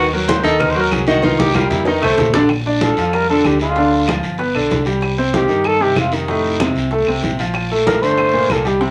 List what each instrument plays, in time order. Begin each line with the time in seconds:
Already playing: fingered electric bass D#2
0.13 grand piano F#3 F#4 A#4, high conga
0.28 tenor saxophone C5, cowbell, high conga, short guiro
0.43 fingered electric bass D#2, grand piano D#3 D#4 D#5, tenor saxophone A4, cowbell, high conga, short guiro
0.59 tenor saxophone A#4, cowbell, high conga, low conga, long guiro, claves
0.70 tenor saxophone C5
0.75 grand piano F#3 F#4 A#4, high conga
0.80 tenor saxophone A#4
0.91 fingered electric bass C2, tenor saxophone G#4, cowbell, high conga, short guiro, claves
1.07 grand piano D#3 D#4 D#5, tenor saxophone F#4, high conga, short guiro
1.22 grand piano D#3 D#4 D#5, tenor saxophone F4, cowbell, high conga, long guiro
1.39 tenor saxophone G4, high conga
1.54 grand piano G3 G4 A#4, tenor saxophone F4, cowbell, high conga, short guiro, claves
1.70 fingered electric bass F2, tenor saxophone E4, low conga, short guiro
1.85 grand piano D#3 D#4 D#5, tenor saxophone D#4, cowbell, high bongo, long guiro
2.01 fingered electric bass C2, tenor saxophone A3, grand piano A3 A4 C5, low conga, claves
2.18 fingered electric bass A#1, cowbell, low bongo, low conga, short guiro
2.34 grand piano D3 D4 D5, cowbell, low bongo, low conga, short guiro
2.49 high bongo, high conga, long guiro, claves
2.65 grand piano D4 D5, high bongo, high conga
2.81 tenor saxophone F3, trumpet A4, high bongo, high conga, short guiro
2.97 fingered electric bass F2, grand piano F3 F4, high bongo, high conga, short guiro
3.13 tenor saxophone G3, trumpet A#4, high bongo, high conga, long guiro, claves
3.30 grand piano D3 D4, tenor saxophone F3, trumpet A4, high conga
3.44 fingered electric bass D2, tenor saxophone D3, trumpet G4, high bongo, low bongo, high conga, short guiro, claves
3.60 tenor saxophone D3, grand piano G#3 G#4, trumpet F4, high bongo, high conga, short guiro
3.75 grand piano D3 D4, high bongo, high conga, long guiro
3.91 high bongo, high conga
4.07 grand piano F3 F4, high bongo, high conga, short guiro, claves
4.23 fingered electric bass G1, high bongo, high conga, short guiro
4.38 grand piano B3 B4, high bongo, high conga, long guiro
4.55 fingered electric bass B1, grand piano D3 D4, high conga, claves
4.70 fingered electric bass C2, high bongo, low bongo, high conga, short guiro
4.85 grand piano G3 G4, high bongo, high conga, short guiro
5.01 high bongo, high conga, long guiro, claves
5.18 grand piano C4 C5, high bongo, high conga
5.33 tenor saxophone D#3, trumpet G4, high bongo, high conga, short guiro
5.48 fingered electric bass G2, grand piano D#3 D#4, high bongo, high conga, short guiro
5.64 tenor saxophone D#3, trumpet A4, high bongo, high conga, long guiro, claves
5.80 grand piano C3 C4, tenor saxophone D#3, trumpet G4, high conga
5.96 fingered electric bass F2, tenor saxophone C3, trumpet F4, high bongo, low bongo, high conga, short guiro, claves
6.12 tenor saxophone C3, grand piano D#3 D#4, trumpet D#4, high bongo, high conga, short guiro
6.28 grand piano A2 A3, high bongo, high conga, long guiro
6.44 high bongo, high conga
6.60 grand piano C3 C4, high bongo, high conga, short guiro, claves
6.75 fingered electric bass C2, high bongo, high conga, short guiro
6.91 grand piano A3 A4, high bongo, high conga, long guiro
7.07 fingered electric bass C2, grand piano C3 C4, high conga, claves
7.23 fingered electric bass A#1, high bongo, low bongo, high conga, short guiro
7.39 grand piano F3 F4, high bongo, high conga, short guiro
7.54 high bongo, high conga, long guiro, claves
7.70 grand piano A3 A4, high bongo, high conga
7.86 tenor saxophone F3, trumpet A#4, high bongo, high conga, short guiro
8.02 fingered electric bass G1, grand piano D3 D4, tenor saxophone A3, trumpet C5, high bongo, high conga, short guiro
8.18 high bongo, high conga, long guiro, claves
8.33 grand piano A#2 A#3, high conga
8.50 fingered electric bass C2, tenor saxophone F3, trumpet A4, high bongo, low bongo, high conga, short guiro, claves
8.65 tenor saxophone D#3, grand piano G3 G4, trumpet G4, high bongo, high conga, short guiro
8.81 grand piano C3 C4, high bongo, high conga, long guiro